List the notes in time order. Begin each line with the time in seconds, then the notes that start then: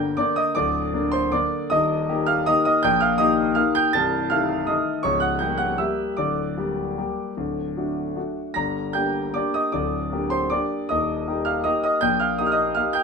Already playing: G1 G2 D3 A#3 D4 G5 A#5 G6 A#6
0.17 D3 A#3 D4 D5 D6
0.36 D#5 D#6
0.55 D1 D2 D5 D6
0.93 D3 A#3 D4
1.12 C5 C6
1.32 D3 A#3 D4 D5 D6
1.70 D#1 D#2 D#5 D#6
2.09 D#3 A#3 G4
2.27 F5 F6
2.46 D#3 A#3 G4 D#5 D#6
2.65 D#5 D#6
2.83 A#1 A#2 G5 G6
3.00 F5 F6
3.18 D#3 A#3 G4 D#5 D#6
3.55 D#3 A#3 G4 F5 F6
3.75 G5 G6
3.93 C1 C2 A5 A6
4.30 D#3 A3 A4 F5 F6
4.67 D#3 A3 A4 D#5 D#6
5.03 C#1 C#2 C#5 C#6
5.20 F#5 F#6
5.39 G3 A#3 G4 G5 G6
5.58 F#5 F#6
5.78 G3 A#3 G4 E5 E6
6.17 D1 D2 D5 D6
6.57 G3 A#3 G4
6.98 G3 A#3 G4
7.37 D1 D2
7.76 A3 D4 F#4
8.16 A3 D4 F#4
8.54 G1 G2 A#5 A#6
8.93 A#3 D4 G4 G5 G6
9.34 A#3 D4 G4 D5 D6
9.54 D#5 D#6
9.72 D1 D2 D5 D6
10.12 A#3 D4 G4
10.30 C5 C6
10.50 A#3 D4 G4 D5 D6
10.89 D#1 D#2 D#5 D#6
11.27 A#3 D#4 G4
11.45 F5 F6
11.64 A#3 D#4 G4 D#5 D#6
11.83 D#5 D#6
12.01 A#1 A#2 G5 G6
12.20 F5 F6
12.38 A#3 D#4 G4 D#6
12.46 F6
12.52 D#5 D#6
12.75 A#3 D#4 G4 F5 F6
12.93 G5 G6